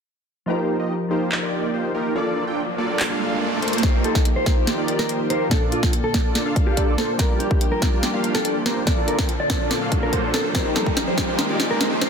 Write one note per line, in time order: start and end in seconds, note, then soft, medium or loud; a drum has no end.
0.46 1.07 F3 medium
0.46 0.77 A#3 medium
0.46 1.08 D#4 medium
0.46 0.77 D#4 medium
0.46 0.77 F4 medium
0.46 0.77 G4 medium
0.46 1.09 G4 medium
0.46 1.09 A#4 loud
0.46 0.77 C5 medium
0.46 riser medium
0.80 0.93 A#3 medium
0.80 0.93 D#4 medium
0.80 0.93 F4 medium
0.80 0.93 G4 medium
0.80 0.93 D#5 medium
1.09 2.12 F3 medium
1.09 1.40 A#3 medium
1.09 2.13 D#4 medium
1.09 1.40 D#4 medium
1.09 1.40 F4 medium
1.09 1.40 G4 medium
1.09 2.14 G4 medium
1.09 1.40 C5 loud
1.13 2.14 A#4 medium
1.32 clap loud
1.42 1.71 A#3 medium
1.42 1.71 D#4 medium
1.42 1.71 F4 medium
1.42 1.71 G4 medium
1.42 1.71 D5 loud
1.74 1.92 A#3 medium
1.74 1.92 D#4 medium
1.74 1.92 F4 medium
1.74 1.92 G4 medium
1.74 1.92 C5 medium
1.95 2.13 A#3 medium
1.95 2.13 D#4 medium
1.95 2.13 F4 medium
1.95 2.13 G4 medium
1.95 2.13 A#4 loud
2.14 2.75 A#3 medium
2.14 2.45 A#3 medium
2.14 2.45 D4 medium
2.14 2.76 F4 medium
2.14 2.45 F4 medium
2.14 2.45 A4 medium
2.14 2.76 A4 medium
2.14 2.45 D5 loud
2.14 2.77 D5 loud
2.47 2.61 A#3 medium
2.47 2.61 D4 medium
2.47 2.61 F4 medium
2.47 2.61 A4 medium
2.47 2.61 G5 medium
2.77 3.80 A#3 medium
2.77 3.08 A#3 medium
2.77 3.08 D4 medium
2.77 3.81 F4 medium
2.77 3.08 F4 medium
2.77 3.08 A4 medium
2.77 3.81 A4 medium
2.77 3.08 D5 loud
2.81 3.82 D5 medium
3.00 clap loud
3.10 3.39 A#3 loud
3.10 3.39 D4 medium
3.10 3.39 F4 medium
3.10 3.39 A4 medium
3.10 3.39 F5 loud
3.41 3.60 A#3 medium
3.41 3.60 D4 medium
3.41 3.60 F4 medium
3.41 3.60 A4 medium
3.41 3.60 D5 medium
3.62 3.81 A#3 medium
3.62 3.81 D4 medium
3.62 3.81 F4 medium
3.62 3.81 A4 medium
3.62 3.81 C5 loud
3.62 closed hi-hat medium
3.68 closed hi-hat medium
3.73 closed hi-hat medium
3.78 4.43 F3 medium
3.78 closed hi-hat medium
3.83 5.50 D#3 medium
3.83 4.12 A#3 medium
3.83 7.16 A#3 medium
3.83 4.44 D#4 medium
3.83 4.12 F4 medium
3.83 5.50 F4 medium
3.83 4.12 G4 medium
3.83 5.50 G4 medium
3.83 4.44 G4 medium
3.83 4.45 A#4 loud
3.83 4.12 C5 loud
3.83 3.97 C5 medium
3.83 kick loud
3.83 snare soft
3.83 closed hi-hat medium
3.83 riser medium
4.04 4.24 A4 medium
4.04 closed hi-hat medium
4.15 4.29 A#3 medium
4.15 4.29 D#4 medium
4.15 4.29 F4 medium
4.15 4.29 D#5 medium
4.15 kick loud
4.15 snare soft
4.25 closed hi-hat medium
4.36 4.62 C5 medium
4.44 5.48 F3 medium
4.44 4.75 A#3 medium
4.44 5.48 D#4 medium
4.44 4.75 D#4 medium
4.44 4.75 F4 medium
4.44 4.75 G4 medium
4.44 5.49 G4 medium
4.44 5.50 A#4 medium
4.44 4.75 C5 loud
4.44 kick loud
4.44 snare soft
4.44 closed hi-hat medium
4.67 snare soft
4.67 closed hi-hat medium
4.78 5.07 A#3 loud
4.78 5.07 D#4 medium
4.78 5.07 F4 medium
4.78 5.07 G4 medium
4.78 5.07 D5 loud
4.88 closed hi-hat medium
4.99 5.18 A#4 medium
4.99 snare soft
5.09 5.28 A#3 medium
5.09 5.28 D#4 medium
5.09 5.28 F4 medium
5.09 5.28 G4 medium
5.09 5.28 C5 medium
5.09 closed hi-hat medium
5.30 5.49 A#3 medium
5.30 5.49 D#4 medium
5.30 5.49 F4 medium
5.30 5.49 G4 medium
5.30 5.49 A#4 loud
5.30 5.43 C5 medium
5.30 closed hi-hat medium
5.49 6.11 A#2 medium
5.49 7.18 D3 medium
5.49 6.11 A#3 medium
5.49 5.80 D4 medium
5.49 6.12 D4 medium
5.49 5.80 A4 medium
5.49 5.64 A4 medium
5.49 7.18 A4 medium
5.49 6.13 A4 loud
5.49 kick loud
5.49 snare medium
5.49 closed hi-hat medium
5.72 5.92 F4 medium
5.72 closed hi-hat medium
5.83 5.97 A#3 medium
5.83 5.97 D4 medium
5.83 5.97 F4 medium
5.83 5.97 A4 medium
5.83 5.97 G5 medium
5.83 kick loud
5.83 snare soft
5.93 closed hi-hat medium
6.04 6.30 A4 loud
6.12 7.16 A#2 medium
6.12 7.16 A#3 medium
6.12 6.43 A#3 medium
6.12 6.43 D4 medium
6.12 7.17 D4 medium
6.12 6.43 F4 medium
6.12 6.43 A4 medium
6.12 6.43 D5 loud
6.12 kick loud
6.12 snare medium
6.12 closed hi-hat medium
6.16 7.18 A4 medium
6.35 snare medium
6.35 closed hi-hat medium
6.46 6.75 A#3 loud
6.46 6.75 D4 medium
6.46 6.75 F4 medium
6.46 6.75 A4 medium
6.46 6.75 F5 loud
6.56 kick loud
6.56 closed hi-hat medium
6.67 6.86 G4 medium
6.77 6.96 A#3 medium
6.77 6.96 D4 medium
6.77 6.96 F4 medium
6.77 6.96 A4 medium
6.77 6.96 D5 medium
6.77 kick medium
6.77 closed hi-hat medium
6.98 7.17 A#3 medium
6.98 7.17 D4 medium
6.98 7.17 F4 medium
6.98 7.11 A4 medium
6.98 7.17 A4 medium
6.98 7.17 C5 loud
6.98 snare medium
6.98 closed hi-hat medium
7.17 8.85 F3 medium
7.17 7.79 G3 loud
7.17 7.48 A#3 medium
7.17 8.85 A#3 medium
7.17 7.79 D4 medium
7.17 7.48 D4 medium
7.17 7.48 F4 medium
7.17 7.80 F4 medium
7.17 7.48 G4 medium
7.17 8.85 G4 medium
7.17 7.32 A#4 medium
7.17 7.81 A#4 loud
7.17 7.48 D5 loud
7.17 kick loud
7.17 snare medium
7.17 closed hi-hat medium
7.40 7.59 G4 medium
7.40 closed hi-hat medium
7.51 7.65 A#3 medium
7.51 7.65 D4 medium
7.51 7.65 F4 medium
7.51 7.65 G4 medium
7.51 7.65 G5 medium
7.51 kick loud
7.61 closed hi-hat medium
7.72 7.97 A#4 medium
7.80 8.83 G3 medium
7.80 8.11 A#3 medium
7.80 8.84 D4 medium
7.80 8.11 D4 medium
7.80 8.11 F4 medium
7.80 8.85 F4 medium
7.80 8.11 G4 medium
7.80 8.85 A#4 medium
7.80 8.11 D5 loud
7.80 kick loud
7.80 snare medium
7.80 closed hi-hat medium
8.03 snare medium
8.03 closed hi-hat medium
8.14 8.42 A#3 loud
8.14 8.42 D4 medium
8.14 8.42 F4 medium
8.14 8.42 G4 medium
8.14 8.42 F5 loud
8.24 closed hi-hat medium
8.35 8.54 A4 medium
8.35 snare medium
8.45 8.63 A#3 medium
8.45 8.63 D4 medium
8.45 8.63 F4 medium
8.45 8.63 G4 medium
8.45 8.63 D5 medium
8.45 closed hi-hat medium
8.66 8.84 A#3 medium
8.66 8.84 D4 medium
8.66 8.84 F4 medium
8.66 8.84 G4 medium
8.66 8.79 A#4 medium
8.66 8.84 C5 loud
8.66 snare medium
8.66 closed hi-hat medium
8.85 9.46 A#2 medium
8.85 10.53 D3 medium
8.85 9.47 A#3 medium
8.85 12.10 A#3 medium
8.85 9.48 D4 medium
8.85 10.53 A4 medium
8.85 9.48 A4 loud
8.85 9.00 D5 medium
8.85 kick loud
8.85 snare medium
8.85 closed hi-hat medium
9.08 9.27 A#4 medium
9.08 closed hi-hat medium
9.19 kick loud
9.19 snare medium
9.29 closed hi-hat medium
9.40 9.65 D5 medium
9.48 10.20 A#2 medium
9.48 10.21 A#3 medium
9.48 9.79 A#3 medium
9.48 9.79 D4 medium
9.48 10.22 D4 medium
9.48 9.79 F4 medium
9.48 9.79 A4 medium
9.48 9.79 D5 loud
9.48 kick loud
9.48 snare medium
9.48 closed hi-hat medium
9.52 10.22 A4 medium
9.71 snare medium
9.71 closed hi-hat medium
9.81 10.10 A#3 loud
9.81 10.10 D4 medium
9.81 10.10 F4 medium
9.81 10.10 A4 medium
9.81 10.10 F5 loud
9.92 kick loud
9.92 closed hi-hat medium
10.03 10.22 A#4 medium
10.13 10.31 A#3 medium
10.13 10.31 D4 medium
10.13 10.31 F4 medium
10.13 10.31 A4 medium
10.13 10.31 C5 medium
10.13 kick medium
10.13 closed hi-hat medium
10.23 10.52 A#2 medium
10.23 10.52 A#3 medium
10.23 10.52 D4 medium
10.23 10.53 A4 medium
10.34 10.52 A#3 medium
10.34 10.52 D4 medium
10.34 10.52 F4 medium
10.34 10.52 A4 medium
10.34 10.47 A4 medium
10.34 10.52 C5 loud
10.34 snare medium
10.34 closed hi-hat medium
10.53 12.10 D#3 medium
10.53 11.14 F3 loud
10.53 10.84 A#3 medium
10.53 11.15 D#4 medium
10.53 10.84 F4 medium
10.53 12.10 F4 medium
10.53 12.10 G4 medium
10.53 11.16 G4 medium
10.53 11.16 A#4 loud
10.53 10.68 C5 medium
10.53 kick loud
10.53 snare medium
10.53 closed hi-hat medium
10.76 10.95 A4 medium
10.76 snare medium
10.76 closed hi-hat medium
10.86 11.00 A#3 medium
10.86 11.00 D#4 medium
10.86 11.00 F4 medium
10.86 11.00 G4 medium
10.86 11.00 D#5 medium
10.86 kick loud
10.97 snare medium
10.97 closed hi-hat medium
11.08 11.33 C5 medium
11.16 12.10 F3 medium
11.16 11.47 A#3 medium
11.16 12.10 D#4 medium
11.16 11.47 D#4 medium
11.16 11.47 F4 medium
11.16 11.47 G4 medium
11.16 12.10 G4 medium
11.16 12.10 A#4 medium
11.16 11.47 C5 loud
11.16 kick loud
11.16 snare medium
11.16 closed hi-hat medium
11.39 snare medium
11.39 closed hi-hat medium
11.49 11.78 A#3 loud
11.49 11.78 D#4 medium
11.49 11.78 F4 medium
11.49 11.78 G4 medium
11.49 11.78 D5 loud
11.60 snare medium
11.60 closed hi-hat medium
11.71 11.90 A#4 loud
11.80 11.99 A#3 medium
11.80 11.99 D#4 medium
11.80 11.99 F4 medium
11.80 11.99 G4 medium
11.80 11.99 C5 medium
11.80 snare medium
11.80 closed hi-hat medium
12.02 12.10 A#3 medium
12.02 12.10 D#4 medium
12.02 12.10 F4 medium
12.02 12.10 G4 medium
12.02 12.10 A#4 loud
12.02 12.10 C5 medium
12.02 snare medium
12.02 closed hi-hat medium